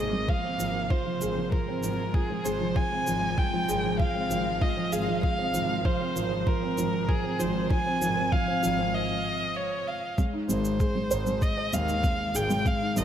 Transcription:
Already playing: double bass section G#1, ambient pad C3 D#3 A#3, felt piano G#3 D#4 G#4 C5 D#5
0.00 violin D#5
0.13 felt piano G#3
0.29 felt piano F3, ambient pad F3 G#3, violin F5, kick
0.44 felt piano C4
0.59 double bass section G#1, felt piano F3, shaker
0.90 felt piano F4, violin C5, kick
1.06 felt piano F3
1.21 double bass section G#1, felt piano G#4, shaker
1.37 felt piano F3
1.52 felt piano F3, violin A#4, kick
1.68 felt piano C4
1.83 double bass section G#1, felt piano F3, shaker
2.14 felt piano F4, violin G#4, kick
2.30 felt piano F3
2.45 double bass section G#1, felt piano G#4, violin C5, shaker
2.61 felt piano F3
2.76 felt piano F3, violin G#5, kick
2.92 felt piano C4
3.07 double bass section G#1, felt piano F3, shaker
3.38 felt piano F4, violin G5, kick
3.54 felt piano F3
3.69 double bass section G#1, felt piano G#4, shaker
3.84 felt piano F3
4.00 felt piano F3, violin F5, kick
4.15 felt piano C4
4.31 double bass section G#1, felt piano F3, shaker
4.61 felt piano F4, violin D#5, kick
4.77 felt piano F3
4.92 double bass section G#1, felt piano G#4, violin F5, shaker
5.08 felt piano F3
5.23 felt piano F3, violin F5, kick
5.38 felt piano C4
5.54 double bass section G#1, felt piano F3, shaker
5.85 felt piano F3, violin C5, kick
6.00 felt piano C4
6.16 double bass section G#1, felt piano F3, shaker
6.47 felt piano F3, violin A#4, kick
6.62 felt piano C4
6.78 double bass section G#1, felt piano F3, shaker
7.09 felt piano F3, violin G#4, kick
7.24 felt piano C4
7.39 double bass section G#1, felt piano F3, violin C5, shaker
7.70 felt piano F3, violin G#5, kick
7.86 felt piano C4
8.01 double bass section G#1, felt piano F3, shaker
8.17 felt piano C4
8.32 felt piano F3, violin F5, kick
8.48 felt piano C4
8.63 double bass section G#1, felt piano F3, shaker
8.79 felt piano C4
8.94 violin D#5
9.56 violin C#5
9.87 violin F5
10.18 ambient pad C3 D#3 G#3, felt piano G#3, kick, shaker
10.33 felt piano D#4
10.49 double bass section G#1, felt piano G#3, violin C5, shaker
10.65 shaker
10.80 felt piano G#4, kick, shaker
10.95 felt piano G#3
11.11 double bass section G#1, felt piano C5, shaker
11.27 felt piano G#3, shaker
11.42 violin D#5, kick, shaker
11.58 felt piano D#5
11.73 double bass section D#2, felt piano G#3, violin F5, shaker
11.89 felt piano D#4, shaker
12.04 felt piano G#3, kick, shaker
12.35 double bass section G#1, felt piano G#4, violin G5, shaker
12.50 felt piano G#3, shaker
12.66 felt piano G#3, violin F5, kick, shaker
12.81 felt piano D#4
12.96 double bass section G#1, felt piano G#3, violin D#5, shaker

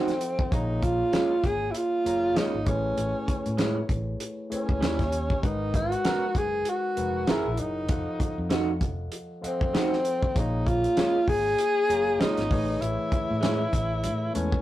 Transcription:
Already playing: tine electric piano F3 F4 A4 D#5 F#5, tenor saxophone C4
0.08 snare, closed hi-hat
0.21 closed hi-hat
0.39 kick
0.51 fingered electric bass A#1, tine electric piano A#3 F4 G#4 C#5 A#5, tenor saxophone D#4, kick, closed hi-hat
0.83 tenor saxophone F4, kick, closed hi-hat
1.12 clean electric guitar G#3 C#4 F4, snare, closed hi-hat
1.44 fingered electric bass G#1, tenor saxophone G#4, kick, closed hi-hat
1.71 tenor saxophone E4, closed hi-hat
1.77 tenor saxophone F4
2.04 fingered electric bass F#1, tine electric piano A#3 F4 G#4 C#5 A#5, closed hi-hat
2.35 clean electric guitar G#3 C#4 F4, tenor saxophone D#4, snare, closed hi-hat
2.55 fingered electric bass G#1
2.65 fingered electric bass A1, tine electric piano A3 E4 G#4 B4 C#5, tenor saxophone C#4, kick, closed hi-hat
2.97 fingered electric bass A1, closed hi-hat
3.28 muted fingered electric bass stroke, kick, closed hi-hat
3.46 fingered electric bass A2, closed hi-hat
3.58 clean electric guitar G#3 C#4 E4, snare, closed hi-hat
3.89 fingered electric bass A1, kick, closed hi-hat
4.20 closed hi-hat
4.50 tine electric piano A3 E4 G#4 B4 C#5, tenor saxophone C#4, muted fingered electric bass stroke, closed hi-hat
4.69 fingered electric bass C#2, kick
4.81 fingered electric bass D#2, tine electric piano D#3 D#4 G4 C#5 E5, clean electric guitar G3 C#4 E4, snare, closed hi-hat
4.99 kick, snare, closed hi-hat
5.12 closed hi-hat
5.30 kick
5.42 fingered electric bass G#1, tine electric piano G#3 D#4 A#4 B4 F#5, tenor saxophone D#4, kick, closed hi-hat
5.74 tenor saxophone F#4, kick, closed hi-hat
5.92 closed hi-hat
6.04 clean electric guitar B3 F#4 A#4, snare, closed hi-hat
6.35 fingered electric bass F#1, tenor saxophone G#4, kick, closed hi-hat
6.65 tenor saxophone F#4, closed hi-hat
6.96 fingered electric bass F1, tine electric piano G#3 D#4 A#4 B4 F#5, closed hi-hat
7.26 fingered electric bass F#1, tine electric piano F#3 E4 G#4 A#4 F#5, clean electric guitar E4 G#4 A#4, tenor saxophone E4, snare, closed hi-hat
7.46 fingered electric bass A#1
7.57 fingered electric bass F#1, tenor saxophone D#4, closed hi-hat
7.88 fingered electric bass F1, tine electric piano F3 F4 A4 D#5 F#5, kick, closed hi-hat
8.20 muted fingered electric bass stroke, kick, closed hi-hat
8.38 fingered electric bass F2
8.50 clean electric guitar A3 D#4 F#4, snare, closed hi-hat
8.81 fingered electric bass F1, kick, closed hi-hat
9.12 closed hi-hat
9.42 tine electric piano F3 F4 A4 D#5 F#5, muted fingered electric bass stroke, closed hi-hat
9.47 tenor saxophone C4
9.61 fingered electric bass F#1, kick
9.73 clean electric guitar A3 D#4 F#4, snare, closed hi-hat
9.93 snare
10.05 closed hi-hat
10.23 kick
10.34 fingered electric bass A#1, tine electric piano A#3 F4 G#4 C#5 A#5, kick, closed hi-hat
10.39 tenor saxophone D#4
10.67 tenor saxophone F4, kick, closed hi-hat
10.84 closed hi-hat
10.97 clean electric guitar G#3 C#4 F4, snare, closed hi-hat
11.28 fingered electric bass G#1, tenor saxophone G#4, kick, open hi-hat
11.58 closed hi-hat
11.88 fingered electric bass F#1, tine electric piano A#3 F4 G#4 C#5 A#5, closed hi-hat
12.20 clean electric guitar G#3 C#4 F4, tenor saxophone D#4, snare, closed hi-hat
12.37 fingered electric bass G#1, snare, closed hi-hat
12.49 fingered electric bass A1, tine electric piano E3 A3 G#4 B4 C#5, kick, open hi-hat
12.81 fingered electric bass A1, tenor saxophone E4, closed hi-hat
13.12 muted fingered electric bass stroke, kick, closed hi-hat
13.30 fingered electric bass A2
13.41 clean electric guitar G#3 C#4 E4, snare, closed hi-hat
13.73 fingered electric bass A1, kick, closed hi-hat
14.04 fingered electric bass A2, closed hi-hat
14.33 fingered electric bass E2, tine electric piano G#3 A3 E4 B4 C#5 A5, tenor saxophone C#4, closed hi-hat
14.52 kick

